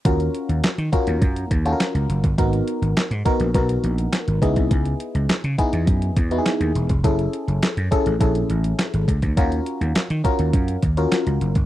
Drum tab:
HH |xxxxxxxxxxxxxxxx|xxxxxxxxxxxxxxxx|xxxxxxxxxxxxxxxx|xxxxxxxxxxxxxxxx|
CP |----x-------x---|----x-------x---|----x-------x---|----x-------x---|
SD |----o-------o---|----o-------o---|----o-------o---|----o-------o---|
BD |o-----o-o-o----o|o-----o-o-----oo|o-----o-o-o----o|o-----o-o-----oo|

HH |xxxxxxxxxxxxxxxx|
CP |----x-------x---|
SD |----o-------o---|
BD |o-----o-o-o----o|